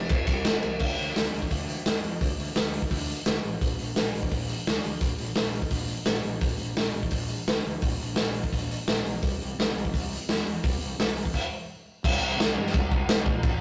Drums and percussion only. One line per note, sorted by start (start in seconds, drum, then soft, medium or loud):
0.09 kick loud
0.09 ride loud
0.27 kick medium
0.27 ride medium
0.45 snare loud
0.45 ride loud
0.63 ride medium
0.79 kick loud
0.79 crash loud
0.98 open hi-hat medium
1.16 snare loud
1.16 open hi-hat medium
1.34 open hi-hat medium
1.42 kick medium
1.51 kick loud
1.51 open hi-hat medium
1.69 open hi-hat medium
1.86 snare loud
1.86 open hi-hat medium
2.04 open hi-hat medium
2.21 kick loud
2.21 open hi-hat medium
2.40 open hi-hat medium
2.56 snare loud
2.56 open hi-hat medium
2.73 open hi-hat medium
2.82 kick medium
2.91 kick loud
2.91 open hi-hat medium
3.08 open hi-hat medium
3.26 snare loud
3.26 open hi-hat medium
3.44 open hi-hat soft
3.61 kick loud
3.61 open hi-hat medium
3.79 open hi-hat medium
3.96 snare loud
3.96 open hi-hat medium
4.15 open hi-hat medium
4.23 kick medium
4.31 kick loud
4.31 open hi-hat medium
4.49 open hi-hat medium
4.67 snare loud
4.67 open hi-hat medium
4.84 open hi-hat medium
5.01 kick loud
5.01 open hi-hat medium
5.18 open hi-hat medium
5.36 snare loud
5.36 open hi-hat medium
5.53 open hi-hat medium
5.62 kick medium
5.71 kick loud
5.71 open hi-hat medium
5.88 open hi-hat medium
6.06 snare loud
6.06 open hi-hat medium
6.23 open hi-hat medium
6.41 kick loud
6.41 open hi-hat medium
6.59 open hi-hat medium
6.77 snare loud
6.77 open hi-hat medium
6.94 open hi-hat medium
7.03 kick medium
7.11 kick loud
7.11 open hi-hat medium
7.29 open hi-hat medium
7.48 snare loud
7.48 open hi-hat medium
7.66 open hi-hat medium
7.82 kick loud
7.82 open hi-hat medium
8.00 open hi-hat medium
8.16 snare loud
8.16 open hi-hat medium
8.34 open hi-hat medium
8.44 kick medium
8.53 kick loud
8.53 open hi-hat medium
8.71 open hi-hat medium
8.88 snare loud
8.88 open hi-hat medium
8.97 snare soft
9.06 open hi-hat medium
9.23 kick loud
9.23 open hi-hat medium
9.41 open hi-hat medium
9.60 snare loud
9.60 open hi-hat medium
9.78 open hi-hat medium
9.85 kick medium
9.94 kick loud
9.94 open hi-hat medium
10.13 open hi-hat medium
10.29 snare loud
10.29 open hi-hat medium
10.39 snare soft
10.47 open hi-hat medium
10.64 kick loud
10.64 open hi-hat medium
10.81 open hi-hat medium
11.00 snare loud
11.00 open hi-hat medium
11.17 open hi-hat medium
11.25 kick medium
11.34 kick loud
11.34 crash loud
12.04 kick loud
12.04 crash loud
12.04 crash medium
12.40 snare loud
12.40 crash medium
12.67 snare soft
12.74 kick loud
12.74 crash medium
12.92 kick loud
13.09 snare loud
13.09 crash medium
13.26 kick medium
13.43 kick loud
13.43 crash medium